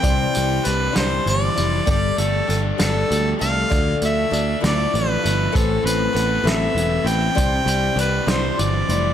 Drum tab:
HH |xxxxxx|xxxxxx|xxxxxx|xxxxxx|
SD |---o--|---o--|---o--|---o--|
BD |o-----|o-----|o-----|o-----|

HH |xxxxxx|
SD |---o--|
BD |o-----|